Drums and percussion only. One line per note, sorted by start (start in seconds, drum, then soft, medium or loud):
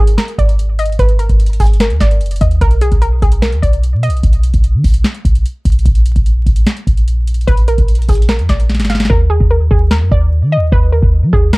0.07 closed hi-hat medium
0.18 snare loud
0.18 closed hi-hat medium
0.28 closed hi-hat medium
0.38 kick medium
0.38 closed hi-hat medium
0.49 closed hi-hat medium
0.59 closed hi-hat medium
0.79 closed hi-hat medium
0.86 closed hi-hat medium
0.92 closed hi-hat soft
0.99 kick loud
0.99 closed hi-hat medium
1.09 closed hi-hat medium
1.19 closed hi-hat medium
1.29 kick medium
1.29 closed hi-hat medium
1.40 closed hi-hat medium
1.46 closed hi-hat medium
1.53 closed hi-hat medium
1.60 kick loud
1.60 closed hi-hat medium
1.60 open hi-hat medium
1.67 closed hi-hat medium
1.73 closed hi-hat medium
1.80 snare loud
1.80 closed hi-hat medium
1.90 closed hi-hat medium
2.00 kick medium
2.00 snare medium
2.00 closed hi-hat medium
2.11 closed hi-hat medium
2.21 closed hi-hat medium
2.26 closed hi-hat medium
2.31 closed hi-hat medium
2.36 closed hi-hat medium
2.41 kick medium
2.41 closed hi-hat medium
2.51 closed hi-hat soft
2.61 kick loud
2.61 closed hi-hat medium
2.71 closed hi-hat medium
2.81 closed hi-hat medium
2.92 kick medium
2.92 closed hi-hat medium
3.02 closed hi-hat medium
3.22 kick loud
3.22 closed hi-hat medium
3.32 closed hi-hat medium
3.42 snare loud
3.42 closed hi-hat medium
3.52 closed hi-hat medium
3.63 kick medium
3.63 closed hi-hat medium
3.73 closed hi-hat medium
3.83 closed hi-hat medium
4.03 closed hi-hat medium
4.10 closed hi-hat medium
4.17 closed hi-hat soft
4.23 kick loud
4.23 closed hi-hat medium
4.33 closed hi-hat medium
4.43 closed hi-hat medium
4.54 kick medium
4.54 closed hi-hat medium
4.64 closed hi-hat medium
4.84 kick loud
4.84 open hi-hat medium
4.94 closed hi-hat medium
5.04 snare loud
5.04 closed hi-hat medium
5.15 closed hi-hat medium
5.25 kick medium
5.25 closed hi-hat medium
5.35 closed hi-hat medium
5.46 closed hi-hat medium
5.65 kick medium
5.65 closed hi-hat medium
5.72 closed hi-hat medium
5.79 closed hi-hat soft
5.86 kick loud
5.86 closed hi-hat medium
5.95 closed hi-hat medium
6.06 closed hi-hat medium
6.16 kick loud
6.16 closed hi-hat medium
6.26 closed hi-hat medium
6.46 kick loud
6.46 closed hi-hat medium
6.56 closed hi-hat medium
6.67 snare loud
6.67 closed hi-hat medium
6.77 closed hi-hat medium
6.87 kick medium
6.87 closed hi-hat medium
6.97 closed hi-hat medium
7.08 closed hi-hat medium
7.27 closed hi-hat medium
7.34 closed hi-hat medium
7.41 closed hi-hat soft
7.48 kick loud
7.48 closed hi-hat medium
7.57 closed hi-hat medium
7.68 closed hi-hat medium
7.78 kick loud
7.78 closed hi-hat medium
7.88 closed hi-hat medium
7.95 closed hi-hat medium
8.02 closed hi-hat medium
8.09 kick loud
8.09 closed hi-hat medium
8.09 open hi-hat medium
8.15 closed hi-hat medium
8.22 closed hi-hat medium
8.29 snare loud
8.29 closed hi-hat medium
8.39 closed hi-hat medium
8.49 kick medium
8.49 snare medium
8.49 closed hi-hat medium
8.60 closed hi-hat medium
8.69 snare medium
8.69 closed hi-hat medium
8.75 snare medium
8.75 closed hi-hat medium
8.80 snare medium
8.80 closed hi-hat medium
8.85 snare medium
8.85 closed hi-hat medium
8.90 snare medium
8.90 closed hi-hat medium
8.95 snare medium
9.00 snare loud
9.00 closed hi-hat soft
9.05 snare medium
9.10 kick loud
9.40 kick loud
9.71 kick loud
9.91 snare loud
10.11 kick medium
10.72 kick loud
11.02 kick medium
11.33 kick loud
11.53 snare loud